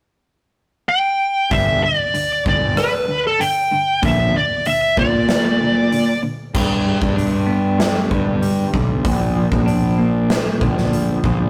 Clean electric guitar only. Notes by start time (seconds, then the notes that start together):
1.51 G2 D3 G3
1.83 G2 D3
2.14 G2 D3
2.46 G2 D3
2.76 G2 D3
3.08 G2 D3
3.39 G2 D3
3.71 G2 D3
4.02 A#2 D3 F3
4.34 A#2 D3
4.67 A#2 D3
4.98 A#2 D3
5.29 A#2 D3
5.61 A#2 D3
5.91 A#2 D3
6.22 A#2 D3
6.54 G2
6.86 G3
7.16 D4
7.46 B3
7.78 G3
8.10 D3
8.42 G3
8.74 D3
9.05 A#2
9.36 F3
9.66 D4
9.98 A#3
10.30 F3
10.61 D3
10.92 F3
11.24 D3